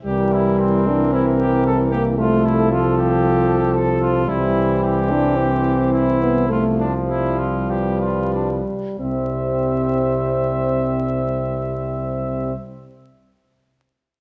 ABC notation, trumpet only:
X:1
M:4/4
L:1/8
Q:1/4=104
K:C
V:1 name="Trumpet"
G E C2 E G A G | F E F G3 A F | E2 G4 E2 | F D E F G F D z |
e8- | e8 |]